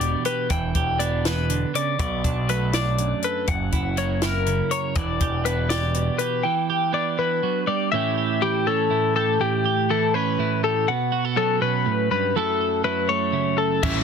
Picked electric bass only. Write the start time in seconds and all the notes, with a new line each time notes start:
Already playing: E1
0.51 E1
0.75 E1
1.99 B1
2.24 B1
3.48 F#1
3.72 F#1
4.96 E1
5.20 E1
13.83 A1